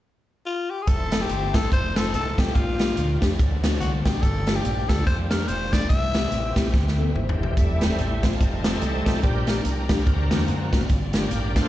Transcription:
0.46 F4
0.70 G4
0.82 G#4
0.87 F1 F3 A3 C4 E4 A4 C5 E5 A5 C6, kick, closed hi-hat
1.12 C4 E4 F4 A4, snare, closed hi-hat
1.21 G4
1.29 G1, closed hi-hat
1.54 A1 C4 E4 F4 A4, kick, snare, closed hi-hat
1.70 F1 C4 D#4 C5 D#5, kick, closed hi-hat
1.96 C4 D#4 F4 A4, snare, closed hi-hat
2.14 C2 A4, closed hi-hat
2.38 B1 C4 D#4 F4 G4 A4, kick, snare, closed hi-hat
2.54 A#1 A#2 G3 A#3 D4 F4 G4 D5 F5 G5, kick, closed hi-hat
2.79 A#3 D4 F4 G4, snare, closed hi-hat
2.97 D2, closed hi-hat
3.21 F2 A#3 D4 F4 G4, kick, snare, closed hi-hat
3.39 D2 D3 F#3 C4 A4 C5 F#5, kick, closed hi-hat
3.63 A#3 C4 D4 F#4, snare, closed hi-hat
3.80 C2 F#4, closed hi-hat
4.05 A#1 A#3 C4 D4 F#4 G4, kick, snare, closed hi-hat
4.22 G1 G2 F3 G3 G4 A4 F5 G5, kick, closed hi-hat
4.47 A#3 D4 F4 G4, snare, closed hi-hat
4.55 G4
4.65 A#1, closed hi-hat
4.89 D2 A#3 D4 F4 G4 A4, kick, snare, closed hi-hat
5.07 F2 C5, kick, closed hi-hat
5.31 A#3 D4 F4 G4 A#4, snare, closed hi-hat
5.48 F1 C5, closed hi-hat
5.72 A#3 D4 F4 A4 D5, kick, snare, closed hi-hat
5.89 C2 C3 E3 C4 C5 E5 G5, kick, closed hi-hat
6.14 A#3 C4 E4 G4, snare, closed hi-hat
6.32 A1, closed hi-hat
6.55 A#1 A#3 C4 E4 G4, kick, snare, closed hi-hat
6.74 D2, kick, snare
6.88 snare
6.98 A#3 C4 E4 A4
7.15 G1 E4 C5, mid tom
7.29 floor tom
7.39 F#1 G4 E5, floor tom
7.57 F1 G3 A3 E4 C5 E5 A5, kick, closed hi-hat
7.81 A3 C4 E4 F4 A4, snare, closed hi-hat
7.98 A1, closed hi-hat
8.23 A3 C4 E4 F4 C5, kick, snare, closed hi-hat
8.41 F1 G3 A3 D#4 D#5, kick, closed hi-hat
8.64 C4 D#4 F4 A4, snare, closed hi-hat
8.81 C2, closed hi-hat
9.06 B1 C4 D#4 F4 G4 A4, kick, snare, closed hi-hat
9.23 A#1 A#2 G3 C4 D4 G4 A#4 D5 G5 A#5, kick, closed hi-hat
9.47 A#3 D4 F4 G4, snare, closed hi-hat
9.65 C2, closed hi-hat
9.89 A#3 D4 F4 G4, kick, snare, closed hi-hat
10.06 D2 D3 A#3 C4 F#4 C5 F#5 A#5, kick, closed hi-hat
10.31 E2 A#3 C4 D4 F#4, snare, closed hi-hat
10.48 F#2, closed hi-hat
10.72 G#1 A#3 C4 D4 F#4, kick, snare, closed hi-hat
10.89 G1 G2 F5 G5, kick, closed hi-hat
11.13 A#3 D4 F4 G4, snare, closed hi-hat
11.31 A1, closed hi-hat
11.56 A#3 D4 F4 A4 A#4 C5, kick, snare, closed hi-hat

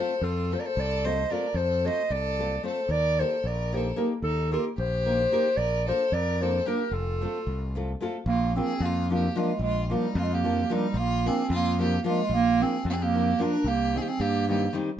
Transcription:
Already playing: A3 A4 C5
0.00 C4 F4 A4
0.21 F2 F4 A4
0.51 A3 C4 F4 A4 C5
0.59 A#4 D5
0.66 A4 C5
0.77 C2 A4 D5
1.05 A3 C4 F4 A4 C5 D#5
1.30 A3 C4 F4 A4 A#4 D5
1.54 F2 A4 C5
1.84 A3 C4 F4 A4 C5 D#5
2.10 C2 A4 D5
2.39 A3 C4 F4 A4
2.63 A3 C4 F4 A4 C5
2.89 D#2 A#4 D5
3.18 A#3 D#4 G4 A4 A#4 C5
3.44 A#1 A#4 D5
3.72 A#3 D#4 G4 A#4 C5
3.77 A4
3.96 A#3 D#4 G4 A#4
4.22 D#2 D#4 A4
4.52 A#3 D#4 F4 G4 A4 A#4
4.78 A#1 G4 C5
5.06 A#3 D#4 G4 A#4
5.32 A#3 D#4 G4 A#4
5.57 A#1 A#4 D5
5.87 A#3 D4 F4 A4 A#4 C5
6.12 F2 A#4 D5
6.41 A#3 D4 F4 A4 A#4 C5
6.66 A#3 D4 F4 G4 A#4
6.91 F1 F4 A4
7.21 A3 C4 F4 A4
7.47 C2
7.75 A3 C4 F4 A4
8.00 A3 C4 F4 A4
8.26 A#1 A#3 F4
8.56 F3 A#3 C4 D4 F4 G#4
8.80 F2 A#3
8.85 F4
9.10 F3 A#3 D4 F4
9.14 G4
9.35 F3 G#3 A#3 D4 F4
9.59 A#1 G#3
9.64 F4
9.83 G#3 F4
9.90 F3 G3 A#3 D4 D#4 F4
10.15 F2 A#3 F4
10.24 G#3 F4
10.33 A#3 G4
10.44 F3 A#3 D4 F4
10.70 F3 G3 A#3 D4 D#4 F4
10.94 A#1 F4
10.99 A#3
11.24 F3 A#3 D4 F4 G#4
11.28 C4
11.50 F2 F4
11.55 A#3
11.79 F3 A#3 D4 F4 G4
12.04 F3 A#3 D4 F4
12.10 G#3
12.29 A#1 F4
12.34 A#3
12.59 F3 A#3 C4 D4 F4 G#4
12.85 F2 F4
12.89 A#3 C4 G#4
13.02 A#3 G4
13.14 F3 A#3 D4 F4
13.39 F3 A#3 D4 F4 A#4
13.43 D4
13.64 C2 A#3 G4
13.93 D#3 G3 C4 D#4 G#4
14.01 A#3 G4
14.08 C4 G#4
14.20 G2 A#3 G4
14.48 D#3 G3 A#3 C4 D#4 G4
14.73 D#3 G3 C4 D#4

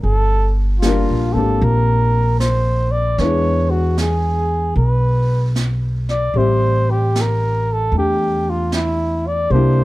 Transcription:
0.03 G1 A4, brush sweep
0.80 G3 A#3 F4, snare, hi-hat pedal
0.85 D4 F4 A#4
1.10 A#1
1.33 G#1 A#3 C4 D4 A4
1.38 G4
1.60 A#1, brush sweep
1.64 A#4
2.40 C5, snare, hi-hat pedal
2.92 D5
3.18 E2 G#3 B3 D4 E4 B4 C#5, brush sweep, snare
3.70 F#4
3.98 G#4, snare, hi-hat pedal
4.76 B1 B4, brush sweep
5.56 snare, hi-hat pedal
6.09 D5, snare
6.34 A1 G3 C4 G4 C5 E5, brush sweep
6.91 G4
7.16 snare, hi-hat pedal
7.21 A#4
7.73 A4
7.92 E2 A3, brush sweep
7.96 D4 G4
8.50 F4
8.72 E4, snare, hi-hat pedal
9.27 D5
9.50 C2 G3 A#3 D4 C5, brush sweep
9.55 E4 G4

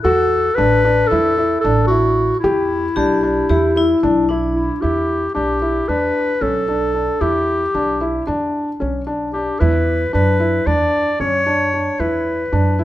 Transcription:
Already playing: F#6
0.04 E2 F#4 A4
0.55 A1 D4 B4
0.85 D4
1.07 E4 A4
1.12 E2
1.38 E4
1.61 A1 D4 A4
1.87 E4 F#4
2.40 E4
2.44 E2 G4
2.96 B1 D4 G4
3.23 D4
3.49 E2 E4 G4
3.76 E4
4.03 B1 D4
4.29 D4 E4
4.55 E4
4.81 E2 E4 G4
5.35 B1 D4 G4
5.62 E4
5.88 E2 D4 B4
6.41 B1 C#4 A4
6.68 D4
6.94 D4
7.21 E2 E4 G4
7.75 B1 D4
8.01 E4
8.27 E2 D4
8.80 B1 C#4
9.07 D4
9.33 D4 G4
9.60 E2 E4 B4
10.13 F#2 D4 B4
10.40 E4
10.67 E2 D4 D5
11.20 F#2 C#4 C#5
11.46 D4
11.74 D4
11.99 E2 E4 B4
12.52 F#2 D4
12.79 E4

